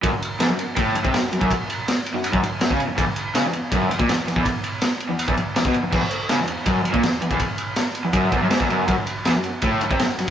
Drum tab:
CC |----------------|----------------|----------------|----------------|
RD |x-x-x-x-x-x-x-x-|x-x-x-x-x-x-x-x-|x-x-x-x-x-x-x-x-|x-x-x-x-x-x-x-x-|
SD |----o-------o---|----o-------o---|----o-------o-o-|----o-------o---|
BD |o-------o--o---o|o--------o---o--|o-------o--o---o|o--------o---o--|

CC |x---------------|----------------|----------------|
RD |--x-x-x-x-x-x-x-|x-x-x-x-x-x-x-x-|x-x-x-x-x-x-x-x-|
SD |----o-------o---|----o-------o---|----o-------o-o-|
BD |o-------o--o---o|o-------o-o--o--|o-------o--o----|